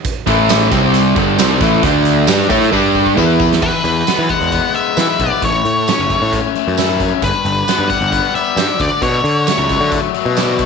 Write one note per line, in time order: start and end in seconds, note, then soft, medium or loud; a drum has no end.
0.04 kick loud
0.04 closed hi-hat loud
0.04 tambourine soft
0.27 0.69 A1 loud
0.27 0.71 A2 medium
0.27 0.71 E3 medium
0.27 0.71 A3 medium
0.27 kick medium
0.27 closed hi-hat medium
0.49 snare loud
0.49 closed hi-hat loud
0.49 tambourine loud
0.71 1.13 C2 medium
0.71 1.16 C3 loud
0.71 1.16 G3 loud
0.71 1.16 C4 medium
0.71 kick loud
0.71 closed hi-hat medium
0.71 tambourine medium
0.94 closed hi-hat loud
0.94 tambourine medium
1.16 1.37 G1 medium
1.16 1.38 G2 medium
1.16 1.38 D3 loud
1.16 1.38 G3 loud
1.16 kick loud
1.16 closed hi-hat medium
1.16 tambourine soft
1.39 1.60 C2 medium
1.39 1.60 C3 medium
1.39 1.61 G3 loud
1.39 1.61 C4 loud
1.39 snare loud
1.39 closed hi-hat medium
1.39 tambourine loud
1.61 1.82 A1 medium
1.61 1.83 A2 medium
1.61 1.83 E3 loud
1.61 1.83 A3 loud
1.61 kick loud
1.61 closed hi-hat medium
1.61 tambourine medium
1.83 2.25 D2 loud
1.83 2.28 D3 medium
1.83 2.28 A3 medium
1.83 2.27 D4 loud
1.83 kick loud
1.83 closed hi-hat loud
2.05 closed hi-hat medium
2.27 2.49 G2 medium
2.27 2.50 G3 medium
2.27 2.50 D4 medium
2.27 2.50 G4 loud
2.27 snare loud
2.27 closed hi-hat medium
2.27 tambourine loud
2.49 2.71 A2 medium
2.49 2.72 A3 medium
2.49 2.73 E4 medium
2.49 2.73 A4 loud
2.49 kick loud
2.49 closed hi-hat medium
2.49 tambourine medium
2.62 snare soft
2.72 3.14 G2 medium
2.72 3.17 G3 medium
2.72 3.17 D4 medium
2.72 3.17 G4 medium
2.72 kick medium
2.72 tambourine medium
2.95 kick medium
2.95 tambourine soft
3.06 kick medium
3.17 3.59 E2 medium
3.17 3.61 E3 medium
3.17 3.62 B3 medium
3.17 3.62 E4 medium
3.17 kick medium
3.17 tambourine medium
3.40 kick loud
3.40 tambourine medium
3.53 snare medium
3.62 3.71 E2 medium
3.62 4.75 E3 medium
3.62 4.32 B4 medium
3.62 kick loud
3.62 crash medium
3.84 4.02 E2 medium
3.84 closed hi-hat medium
4.07 4.52 B3 medium
4.07 snare loud
4.07 closed hi-hat medium
4.07 tambourine loud
4.18 4.27 E3 medium
4.29 4.74 G#3 medium
4.29 4.75 F#5 medium
4.29 kick medium
4.29 closed hi-hat medium
4.41 4.58 E2 medium
4.52 5.19 B3 medium
4.52 kick medium
4.52 closed hi-hat medium
4.75 5.42 G#3 medium
4.75 5.21 E5 medium
4.75 closed hi-hat medium
4.97 5.06 E3 medium
4.97 5.42 E4 medium
4.97 snare medium
4.97 closed hi-hat medium
4.97 tambourine loud
5.19 5.28 B1 medium
5.19 5.43 B3 medium
5.19 5.44 D5 medium
5.19 kick medium
5.19 closed hi-hat medium
5.42 5.60 A1 medium
5.42 6.55 A2 medium
5.42 5.85 C#5 medium
5.42 kick loud
5.42 closed hi-hat medium
5.65 5.91 A2 medium
5.65 closed hi-hat soft
5.88 6.31 C#4 medium
5.88 6.30 C#5 medium
5.88 snare loud
5.88 closed hi-hat medium
5.88 tambourine loud
5.99 6.16 F#1 medium
6.10 6.54 A3 medium
6.10 kick medium
6.10 closed hi-hat medium
6.22 6.39 A2 medium
6.33 6.99 C#4 medium
6.33 kick medium
6.33 closed hi-hat medium
6.55 7.23 A3 medium
6.55 closed hi-hat soft
6.67 7.11 F#2 medium
6.77 7.23 E4 medium
6.77 snare medium
6.77 closed hi-hat medium
6.77 tambourine loud
7.00 7.23 C#4 medium
7.00 kick medium
7.00 closed hi-hat medium
7.22 7.31 G1 medium
7.22 8.35 G2 medium
7.22 7.87 B4 medium
7.22 kick medium
7.22 closed hi-hat medium
7.45 7.62 G1 medium
7.45 closed hi-hat soft
7.67 8.11 B3 medium
7.67 snare loud
7.67 closed hi-hat medium
7.67 tambourine loud
7.79 7.87 G2 medium
7.90 8.34 G3 medium
7.90 8.35 F#5 medium
7.90 kick medium
7.90 closed hi-hat medium
8.01 8.18 G1 medium
8.12 8.80 B3 medium
8.12 kick medium
8.12 closed hi-hat medium
8.35 8.80 G3 medium
8.35 8.81 E5 medium
8.35 closed hi-hat medium
8.57 8.66 G2 medium
8.57 8.80 D4 medium
8.57 snare loud
8.57 closed hi-hat medium
8.57 tambourine loud
8.80 8.89 D2 medium
8.80 9.01 D3 medium
8.80 9.02 D5 medium
8.80 kick medium
8.80 closed hi-hat medium
9.02 9.20 B2 medium
9.02 10.15 D3 medium
9.02 9.44 C#5 medium
9.02 kick medium
9.02 closed hi-hat medium
9.24 9.51 D3 medium
9.24 closed hi-hat soft
9.47 9.91 A3 medium
9.47 9.89 C#5 medium
9.47 snare medium
9.47 closed hi-hat medium
9.47 tambourine loud
9.58 9.76 C#2 medium
9.69 10.14 F#3 medium
9.69 kick medium
9.69 closed hi-hat medium
9.80 9.98 D3 medium
9.92 10.59 A3 medium
9.92 kick medium
9.92 closed hi-hat medium
10.14 10.66 F#3 medium
10.14 closed hi-hat medium
10.26 10.66 B2 medium
10.37 10.66 D4 medium
10.37 snare medium
10.37 closed hi-hat medium
10.37 tambourine medium
10.59 10.66 A3 medium
10.59 kick medium
10.59 closed hi-hat medium